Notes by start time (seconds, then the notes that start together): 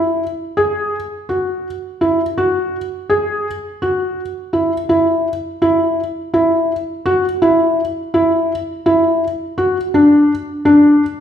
Already playing: E4
0.57 G#4
1.29 F#4
2.01 E4
2.38 F#4
3.10 G#4
3.82 F#4
4.53 E4
4.89 E4
5.62 E4
6.34 E4
7.06 F#4
7.42 E4
8.14 E4
8.86 E4
9.58 F#4
9.94 D4
10.65 D4